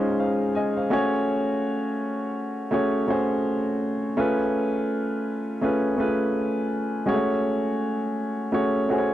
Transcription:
0, 0, Header, 1, 2, 480
1, 0, Start_track
1, 0, Tempo, 724638
1, 850, Time_signature, 4, 2, 24, 8
1, 6054, End_track
2, 0, Start_track
2, 0, Title_t, "Grand piano"
2, 0, Program_c, 0, 0
2, 0, Control_c, 0, 64, 127
2, 0, Note_on_c, 0, 56, 69
2, 0, Note_on_c, 0, 61, 65
2, 0, Note_on_c, 0, 63, 67
2, 0, Note_on_c, 0, 65, 64
2, 0, Note_on_c, 0, 72, 76
2, 106, Note_off_c, 0, 56, 0
2, 109, Note_off_c, 0, 61, 0
2, 112, Note_off_c, 0, 63, 0
2, 114, Note_off_c, 0, 65, 0
2, 117, Note_off_c, 0, 72, 0
2, 128, Note_on_c, 0, 77, 58
2, 132, Note_on_c, 0, 72, 48
2, 357, Note_off_c, 0, 77, 0
2, 359, Note_off_c, 0, 72, 0
2, 364, Note_on_c, 0, 80, 63
2, 373, Note_on_c, 0, 75, 53
2, 499, Note_off_c, 0, 80, 0
2, 504, Note_off_c, 0, 75, 0
2, 507, Note_on_c, 0, 77, 55
2, 508, Note_on_c, 0, 72, 47
2, 597, Note_on_c, 0, 57, 77
2, 601, Note_on_c, 0, 61, 75
2, 603, Note_on_c, 0, 66, 72
2, 612, Note_on_c, 0, 68, 72
2, 617, Control_c, 0, 64, 0
2, 617, Note_on_c, 0, 73, 90
2, 731, Control_c, 0, 64, 127
2, 736, Note_off_c, 0, 77, 0
2, 737, Note_off_c, 0, 72, 0
2, 1496, Note_off_c, 0, 57, 0
2, 1498, Note_off_c, 0, 61, 0
2, 1499, Note_off_c, 0, 66, 0
2, 1504, Note_off_c, 0, 68, 0
2, 1506, Note_off_c, 0, 73, 0
2, 1794, Note_on_c, 0, 57, 71
2, 1798, Note_on_c, 0, 61, 65
2, 1803, Note_on_c, 0, 66, 62
2, 1807, Note_on_c, 0, 68, 65
2, 1815, Note_on_c, 0, 73, 77
2, 2025, Note_off_c, 0, 57, 0
2, 2027, Note_off_c, 0, 61, 0
2, 2030, Note_off_c, 0, 66, 0
2, 2032, Note_off_c, 0, 68, 0
2, 2035, Note_off_c, 0, 73, 0
2, 2036, Note_on_c, 0, 57, 69
2, 2042, Note_on_c, 0, 61, 62
2, 2046, Note_on_c, 0, 66, 58
2, 2052, Note_on_c, 0, 68, 59
2, 2057, Note_on_c, 0, 72, 75
2, 2713, Note_off_c, 0, 57, 0
2, 2716, Note_off_c, 0, 61, 0
2, 2718, Note_off_c, 0, 66, 0
2, 2721, Note_off_c, 0, 68, 0
2, 2723, Note_off_c, 0, 72, 0
2, 2761, Note_on_c, 0, 57, 75
2, 2764, Note_on_c, 0, 61, 69
2, 2767, Note_on_c, 0, 65, 67
2, 2774, Note_on_c, 0, 68, 66
2, 2776, Note_on_c, 0, 71, 80
2, 2779, Control_c, 0, 64, 0
2, 2883, Control_c, 0, 64, 127
2, 3659, Note_off_c, 0, 57, 0
2, 3661, Note_off_c, 0, 61, 0
2, 3662, Note_off_c, 0, 65, 0
2, 3665, Note_off_c, 0, 68, 0
2, 3667, Note_off_c, 0, 71, 0
2, 3718, Note_on_c, 0, 57, 65
2, 3722, Note_on_c, 0, 61, 67
2, 3726, Note_on_c, 0, 65, 63
2, 3730, Note_on_c, 0, 68, 64
2, 3734, Note_on_c, 0, 71, 72
2, 3947, Note_off_c, 0, 57, 0
2, 3948, Note_off_c, 0, 61, 0
2, 3952, Note_off_c, 0, 65, 0
2, 3953, Note_off_c, 0, 68, 0
2, 3956, Note_off_c, 0, 71, 0
2, 3957, Note_on_c, 0, 57, 62
2, 3958, Note_on_c, 0, 61, 59
2, 3965, Note_on_c, 0, 65, 58
2, 3972, Note_on_c, 0, 68, 61
2, 3974, Note_on_c, 0, 71, 75
2, 4634, Note_off_c, 0, 57, 0
2, 4635, Note_off_c, 0, 61, 0
2, 4638, Note_off_c, 0, 65, 0
2, 4642, Note_off_c, 0, 68, 0
2, 4643, Note_off_c, 0, 71, 0
2, 4675, Note_on_c, 0, 56, 59
2, 4679, Note_on_c, 0, 61, 67
2, 4685, Note_on_c, 0, 66, 69
2, 4692, Note_on_c, 0, 68, 70
2, 4695, Note_on_c, 0, 73, 82
2, 4700, Control_c, 0, 64, 0
2, 4717, Note_on_c, 0, 57, 73
2, 4733, Note_off_c, 0, 56, 0
2, 4826, Control_c, 0, 64, 127
2, 5579, Note_off_c, 0, 61, 0
2, 5582, Note_off_c, 0, 66, 0
2, 5586, Note_off_c, 0, 68, 0
2, 5587, Note_off_c, 0, 73, 0
2, 5598, Note_off_c, 0, 57, 0
2, 5643, Note_on_c, 0, 57, 67
2, 5646, Note_on_c, 0, 61, 63
2, 5651, Note_on_c, 0, 66, 62
2, 5656, Note_on_c, 0, 68, 63
2, 5659, Note_on_c, 0, 73, 78
2, 5871, Note_off_c, 0, 57, 0
2, 5873, Note_off_c, 0, 61, 0
2, 5875, Note_off_c, 0, 66, 0
2, 5878, Note_off_c, 0, 68, 0
2, 5879, Note_off_c, 0, 73, 0
2, 5888, Note_on_c, 0, 57, 64
2, 5891, Note_on_c, 0, 61, 58
2, 5896, Note_on_c, 0, 66, 61
2, 5902, Note_on_c, 0, 68, 65
2, 5908, Note_on_c, 0, 72, 57
2, 5949, Note_on_c, 0, 73, 70
2, 5950, Note_off_c, 0, 72, 0
2, 6054, Note_off_c, 0, 57, 0
2, 6054, Note_off_c, 0, 61, 0
2, 6054, Note_off_c, 0, 66, 0
2, 6054, Note_off_c, 0, 68, 0
2, 6054, Note_off_c, 0, 73, 0
2, 6054, End_track
0, 0, End_of_file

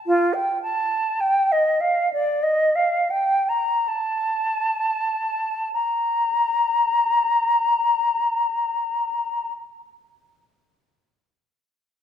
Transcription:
0, 0, Header, 1, 2, 480
1, 0, Start_track
1, 0, Key_signature, -2, "major"
1, 0, Tempo, 1138520
1, 19, Time_signature, 4, 2, 24, 8
1, 500, Tempo, 1237113
1, 980, Tempo, 1445783
1, 1460, Tempo, 1869159
1, 1940, Tempo, 1600000
1, 3380, Tempo, 1530612
1, 3845, End_track
2, 0, Start_track
2, 0, Title_t, "Flute"
2, 0, Program_c, 0, 73
2, 27, Note_on_c, 0, 65, 70
2, 141, Note_on_c, 0, 79, 47
2, 147, Note_off_c, 0, 65, 0
2, 256, Note_off_c, 0, 79, 0
2, 262, Note_on_c, 0, 81, 60
2, 506, Note_on_c, 0, 79, 58
2, 511, Note_off_c, 0, 81, 0
2, 628, Note_on_c, 0, 75, 52
2, 634, Note_off_c, 0, 79, 0
2, 739, Note_on_c, 0, 77, 53
2, 745, Note_off_c, 0, 75, 0
2, 859, Note_off_c, 0, 77, 0
2, 866, Note_on_c, 0, 74, 51
2, 982, Note_on_c, 0, 75, 55
2, 987, Note_off_c, 0, 74, 0
2, 1089, Note_on_c, 0, 77, 47
2, 1094, Note_off_c, 0, 75, 0
2, 1205, Note_on_c, 0, 79, 51
2, 1210, Note_off_c, 0, 77, 0
2, 1333, Note_on_c, 0, 82, 47
2, 1338, Note_off_c, 0, 79, 0
2, 1462, Note_on_c, 0, 81, 47
2, 1466, Note_off_c, 0, 82, 0
2, 1937, Note_off_c, 0, 81, 0
2, 1938, Note_on_c, 0, 82, 50
2, 3075, Note_off_c, 0, 82, 0
2, 3845, End_track
0, 0, End_of_file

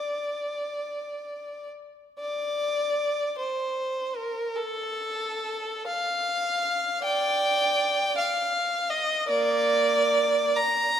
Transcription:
0, 0, Header, 1, 2, 480
1, 0, Start_track
1, 0, Key_signature, -2, "major"
1, 0, Tempo, 1001669
1, 527, Tempo, 1088929
1, 1006, Time_signature, 6, 3, 24, 8
1, 1007, Tempo, 790514
1, 2447, Tempo, 855920
1, 3407, Tempo, 749064
1, 5327, Tempo, 837989
1, 6318, End_track
2, 0, Start_track
2, 0, Title_t, "Violin"
2, 0, Program_c, 0, 40
2, 0, Note_on_c, 0, 74, 60
2, 787, Note_off_c, 0, 74, 0
2, 1012, Note_on_c, 0, 74, 74
2, 1705, Note_off_c, 0, 74, 0
2, 1731, Note_on_c, 0, 72, 62
2, 2205, Note_on_c, 0, 70, 66
2, 2211, Note_off_c, 0, 72, 0
2, 2443, Note_on_c, 0, 69, 81
2, 2444, Note_off_c, 0, 70, 0
2, 3176, Note_off_c, 0, 69, 0
2, 3181, Note_on_c, 0, 77, 90
2, 3885, Note_off_c, 0, 77, 0
2, 3899, Note_on_c, 0, 74, 78
2, 3899, Note_on_c, 0, 79, 97
2, 4590, Note_off_c, 0, 74, 0
2, 4602, Note_off_c, 0, 79, 0
2, 4624, Note_on_c, 0, 77, 82
2, 5089, Note_on_c, 0, 75, 83
2, 5090, Note_off_c, 0, 77, 0
2, 5328, Note_off_c, 0, 75, 0
2, 5336, Note_on_c, 0, 58, 80
2, 5337, Note_on_c, 0, 74, 98
2, 6042, Note_off_c, 0, 58, 0
2, 6051, Note_off_c, 0, 74, 0
2, 6071, Note_on_c, 0, 82, 92
2, 6318, Note_off_c, 0, 82, 0
2, 6318, End_track
0, 0, End_of_file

